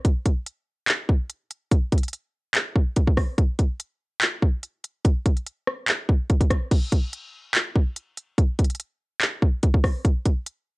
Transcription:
0.05 kick loud
0.05 closed hi-hat medium
0.26 kick medium
0.26 closed hi-hat medium
0.46 closed hi-hat medium
0.88 clap loud
0.88 closed hi-hat medium
1.09 kick loud
1.30 closed hi-hat medium
1.51 closed hi-hat medium
1.71 kick loud
1.71 closed hi-hat medium
1.92 kick medium
1.92 closed hi-hat medium
1.98 closed hi-hat medium
2.03 closed hi-hat medium
2.08 closed hi-hat medium
2.13 closed hi-hat medium
2.55 clap loud
2.55 closed hi-hat medium
2.76 kick loud
2.96 kick medium
2.96 closed hi-hat medium
3.07 kick medium
3.17 kick medium
3.17 cross-stick medium
3.17 open hi-hat soft
3.38 kick loud
3.38 closed hi-hat medium
3.59 kick medium
3.59 closed hi-hat medium
3.80 closed hi-hat medium
4.21 clap loud
4.21 closed hi-hat medium
4.42 kick loud
4.63 closed hi-hat medium
4.84 closed hi-hat medium
5.05 kick loud
5.05 closed hi-hat medium
5.26 kick medium
5.26 closed hi-hat medium
5.37 closed hi-hat soft
5.46 closed hi-hat medium
5.67 cross-stick medium
5.88 clap loud
5.88 closed hi-hat medium
6.09 kick loud
6.30 kick medium
6.30 closed hi-hat medium
6.41 kick medium
6.41 closed hi-hat medium
6.50 kick medium
6.50 cross-stick medium
6.50 closed hi-hat medium
6.71 kick loud
6.71 closed hi-hat medium
6.71 crash loud
6.92 kick medium
6.92 closed hi-hat medium
7.13 closed hi-hat medium
7.55 clap loud
7.55 closed hi-hat medium
7.76 kick loud
7.96 closed hi-hat medium
8.17 closed hi-hat medium
8.38 kick loud
8.38 closed hi-hat medium
8.59 kick medium
8.59 closed hi-hat medium
8.64 closed hi-hat medium
8.70 closed hi-hat medium
8.75 closed hi-hat medium
8.80 closed hi-hat medium
9.21 clap loud
9.21 closed hi-hat medium
9.42 kick loud
9.63 kick medium
9.63 closed hi-hat medium
9.74 kick medium
9.84 kick medium
9.84 cross-stick medium
9.84 open hi-hat soft
10.05 kick loud
10.05 closed hi-hat medium
10.26 kick medium
10.26 closed hi-hat medium
10.46 closed hi-hat medium

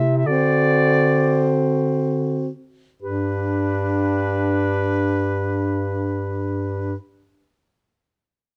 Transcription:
0.00 0.27 C3 soft
0.00 0.26 E4 soft
0.00 0.13 E5 medium
0.17 0.28 E5 soft
0.26 2.53 D3 soft
0.26 2.50 C4 soft
0.26 2.50 F#4 soft
0.26 1.55 D5 medium
3.02 6.94 G2 soft
3.02 6.94 D4 soft
3.02 6.95 G4 soft
3.02 6.95 B4 soft

